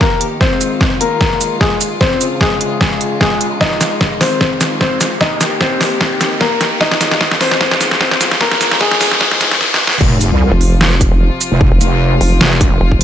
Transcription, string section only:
Already playing: D#3 A#3 G4
0.41 G#3 F4
2.01 C#3 G#3
3.61 D#3
5.21 D#3 A#3 G4
6.81 G#3 F4
8.41 C#3
9.21 D#3 F3
10.01 C3 F3 F4

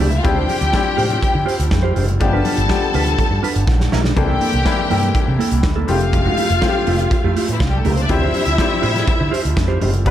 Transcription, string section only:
0.08 E4 E5
0.17 F4 F5
0.25 G4 G5
2.21 A4 A5
4.17 G4 G5
5.89 F4 F5
7.52 E3 E4
7.60 F3 F4
7.69 G3 G4
7.78 A3 A4
7.85 A#3 A#4
7.93 C4 C5
8.01 D4 D5
8.10 E4 E5
10.07 D4 D5

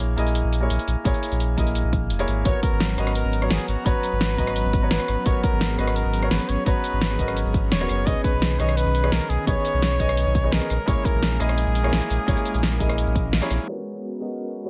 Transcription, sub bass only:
Already playing: A#1
0.17 A#1
0.44 A#1
0.70 A#1
0.87 A#1
1.05 A#1
1.31 A#1
1.58 A#1
1.84 A#1
2.10 E1
2.28 G#1
2.46 G#1
2.72 G#1
2.98 G#1
3.24 G#1
3.51 G#1
3.68 G#1
3.86 G#1
4.12 G#1
4.38 G#1
4.65 G#1
4.91 G#1
5.08 G#1
5.26 G#1
5.52 G#1
5.78 G#1
6.05 G#1
6.31 G#1
6.49 G#1
6.66 G#1
6.93 G#1
7.19 G#1
7.45 G#1
7.72 D#1
7.89 F#1
8.07 B1
8.33 B1
8.59 B1
8.86 B1
9.12 B1
9.29 B1
9.47 B1
9.74 B1
10.00 B1
10.27 B1
10.52 B1
10.70 A#1
10.88 A#1
11.14 A#1
11.40 A#1
11.67 A#1
11.93 A#1
12.10 A#1
12.28 A#1
12.54 A#1
12.80 A#1
13.07 A#1
13.33 A#1
13.50 A#1

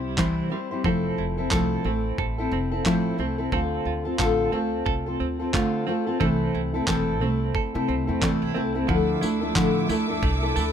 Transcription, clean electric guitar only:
Already playing: G3 C4 E4
0.18 C4
0.52 G3
0.85 C4 A4
1.18 E4
1.52 A4
1.85 C4
2.19 A4
2.53 C4
2.86 E4
3.20 C4
3.53 C4 A4
3.86 F4
4.19 A4
4.52 C4
4.86 A4
5.20 C4
5.54 F4
5.87 C4
6.20 C4 A4
6.55 E4
6.88 A4
7.21 C4
7.55 A4
7.88 C4
8.21 D4
8.42 E4
8.54 C4
8.88 F3
9.21 E4
9.55 A3
9.89 E4
10.23 A3
10.56 A4

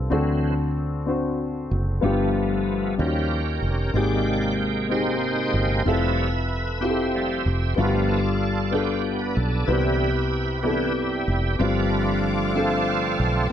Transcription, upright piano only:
Already playing: G2 C4 D4 F4 G4 A4
0.10 D3 C4 D4 F#4 A4
1.06 C4 D4 F#4 C5
2.01 G2 B3 D4 F4 G4
2.98 D#3 C#4 D#4 F4 F#4
3.08 G4
3.94 G#2 C4 D#4 G4 G#4
4.89 C4 D#4 G4 G#4
5.85 C4 E4 F4 A4
6.81 C4 E4 F4 G4
6.90 A4
7.76 G2 B3 D4 F4 F#4
7.86 G4
8.71 B3 D4 F4 A4
9.68 C3 B3 C4 E4 G4
10.63 B3 C4 E4 A4
11.59 G2 C4 D4 F4 G4
12.54 C4 D4 F4 A4

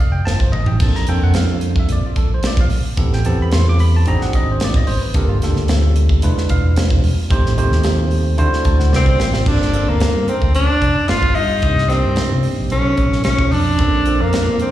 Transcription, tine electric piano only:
0.00 F5
0.12 G5
0.25 A5
0.39 C5
0.52 D#5
0.68 G5
0.81 A#3 C4 D4 F4 A4 A5
0.96 A#5
1.08 A#3 C4 D4 F4 A4 G5
1.23 F#5
1.36 F5
1.80 E5
1.92 D5
2.06 F4
2.17 A4
2.34 C5
2.47 D5
2.61 F5
2.97 B3 C4 E4 G4 A4
3.14 G5
3.25 B3 C4 E4 G4 A4 A5
3.42 B5
3.53 C6
3.69 D6
3.80 B5
3.96 A5
4.06 C4 D4 D#4 F#4 G#4 A#5
4.22 F#5
4.35 D#5
4.52 C5
4.64 D5
4.76 D#5
4.87 C5
5.01 B4
5.14 A#3 D4 F4 G4 A4 A#4
5.29 F4
5.43 A#3 D4 F4 G4 A4
5.70 E5
6.23 G#3 D4 E4 F4 B4
6.50 F5
7.30 A3 C4 D#4 G4 C5
7.57 A3 C4 D#4 G4 C5
8.38 A3 D4 E4 F#4 C5
8.65 A5
8.80 F#5
8.93 D5
9.47 A#3 C4 D4 F4 A4
9.73 A#3 C4 D4 F4 A4
11.63 A#3 C4 D4 D#4 G4
11.89 A#3 C4 D4 D#4 G4
12.71 F#3 B3 C#4 D#4 A4
13.80 F3 A#3 C4 D4 A4
14.06 F3 A#3 C4 D4 A4

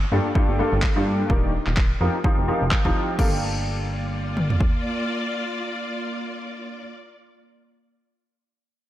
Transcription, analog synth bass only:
0.12 G2
0.49 G1
0.72 G1
0.96 G2
1.30 D#1
1.67 D#1
2.01 F2
2.38 F1
2.61 F1
2.85 D#1
3.19 G1

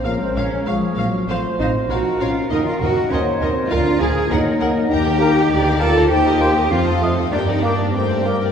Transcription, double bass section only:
0.04 A#1
0.36 A#1
0.67 A#1
0.97 A#1
1.28 A1
1.59 A1
1.89 A#1
2.20 A#1
2.51 D#2
2.80 D#2
3.11 D#2
3.41 D#2
3.72 D2
4.01 D2
4.31 D#2
4.61 D#2
4.91 D#2
5.51 D2
6.10 D#2
6.71 F2
7.33 G2

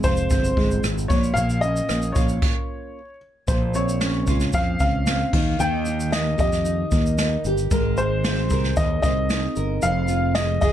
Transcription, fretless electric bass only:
0.04 F1
0.31 G1
0.57 G1
0.84 G#1
1.10 A#1
1.37 A#1
1.90 A#1
2.16 A#1
3.48 A#1
4.28 C#2
4.54 F2
4.80 C#2
5.33 D#2
5.60 D#2
6.39 F2
6.92 D#2
7.45 G1
7.71 G#1
8.50 C2
8.77 D#2
9.04 C2
9.57 G1
9.83 F1
10.62 F1

